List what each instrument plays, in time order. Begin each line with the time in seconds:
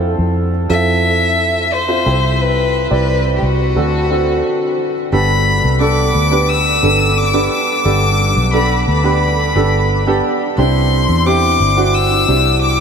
Already playing: fingered electric bass F2, upright piano C4 E4 F4 A4
0.19 fingered electric bass F2
0.69 fingered electric bass F2, upright piano C4 E4 F4 A4, violin E5
1.73 violin C5
1.88 upright piano C4 E4 F4 C5
2.05 fingered electric bass C2, upright piano C3 C4 E4 G4
2.41 violin B4
2.90 fingered electric bass C2, upright piano G3 C4 E4 D5, violin B4
3.36 violin G4
3.42 fingered electric bass C2, violin F#4
3.76 fingered electric bass D2, upright piano D3 C4 D4 F#4 A4
4.10 upright piano C4 D4 F#4 A4
5.12 fingered electric bass G1, upright piano G2 B3 D4 G4 A4, violin B5
5.64 fingered electric bass C2
5.80 upright piano B3 D4 G4 A4, violin D6
6.15 fingered electric bass D2
6.31 upright piano B3 D4 G4 B4
6.49 violin E6
6.82 fingered electric bass G1, upright piano B3 D4 G4 A4
7.18 violin D6
7.33 upright piano B3 D4 G4 A4
7.52 violin D6
7.85 fingered electric bass G1, upright piano G2 B3 D4 G4 A4
8.36 fingered electric bass B1
8.53 upright piano B3 D4 G4 A4, violin B5
8.87 fingered electric bass D2, violin B5
9.04 upright piano B3 D4 G4 B4
9.55 fingered electric bass G1, upright piano B3 D4 G4 A4
10.07 upright piano B3 D4 G4 A4
10.58 fingered electric bass C2, upright piano C3 C4 D4 E4 G4, violin C6
11.09 fingered electric bass E2
11.26 upright piano C4 D4 E4 G4, violin D6
11.60 fingered electric bass G1
11.77 upright piano C4 D4 E4 F#4
11.94 violin E6
12.28 fingered electric bass C2, upright piano C4 D4 E4 G4
12.62 violin D6